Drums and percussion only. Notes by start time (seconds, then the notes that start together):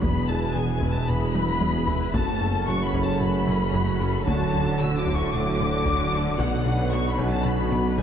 0.02 taiko
0.55 taiko mid
0.82 taiko
1.08 taiko mid
1.35 taiko high
1.61 taiko high
1.87 taiko low
2.14 taiko
2.68 taiko mid
2.94 taiko
3.21 taiko mid
3.48 taiko mid
3.74 taiko
4.27 taiko
4.80 taiko mid
5.07 taiko
5.33 taiko mid
5.60 taiko mid
5.86 taiko
6.39 taiko
6.92 taiko mid
7.19 taiko
7.45 taiko mid
7.72 taiko mid
7.98 taiko